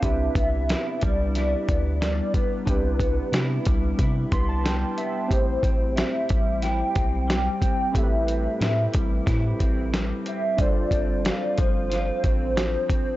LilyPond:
<<
  \new Staff \with { instrumentName = "Soft synth lead" } { \time 4/4 \key c \major \tempo 4 = 91 e''4. d''4. d''8 b'8~ | b'2~ b'8 r4. | c''4 e''4 g''4 g''4 | e''8 e''4. r4. e''8 |
d''4 d''8 c''2~ c''8 | }
  \new Staff \with { instrumentName = "Synth keys" } { \time 4/4 \key c \major << { r1 | r2 r8 c'''16 a''16 g''8 e''8 | r1 | r1 |
r1 | } \\ { <d' e' g' b'>1 | <d' e' g' b'>1 | <c' e' g' c''>1 | <c' e' g' a' b'>1 |
<d' f' a' c''>1 | } >> }
  \new Staff \with { instrumentName = "Clean electric guitar" } { \time 4/4 \key c \major c8 b8 e'8 g8 e'8 b8 g8 b8 | c8 b8 e'8 g8 e'8 b8 g8 b8 | a,8 c'8 e'8 g8 e'8 c'8 g8 c'8 | a,8 c'8 e'8 g8 e'8 c'8 g8 c'8 |
g,8 c'8 f'8 f8 f'8 c'8 f8 c'8 | }
  \new Staff \with { instrumentName = "Analog synth bass" } { \clef bass \time 4/4 \key c \major c,8 c,8. r16 c,4 d,4 r8 | c,4 c8 c,8 c8 c,4 r8 | a,,8 a,,8. r16 a,,4 b,,4 r8 | a,,4 a,8 a,,8 a,8 a,,4 r8 |
g,,8 g,,8. r16 g,,4 a,,4 r8 | }
  \new DrumStaff \with { instrumentName = "Drums" } \drummode { \time 4/4 <hh bd>8 <hh bd>8 <hh sn>8 <hh bd>8 <hh sn>8 <hh bd>8 <hh sn>8 <hh bd>8 | <hh bd>8 <hh bd>8 <hh sn>8 <hh bd>8 <hh bd>8 <hh bd>8 <hh sn>8 hh8 | <hh bd>8 <hh bd>8 <hh sn>8 <hh bd>8 <hh sn>8 <hh bd>8 <hh sn>8 <hh bd>8 | <hh bd>8 hh8 <hh sn>8 <hh bd>8 <hh bd sn>8 <hh bd>8 <hh sn>8 hh8 |
<hh bd>8 <hh bd>8 <hh sn>8 <hh bd>8 <hh sn>8 <hh bd>8 <hh sn>8 <hh bd>8 | }
>>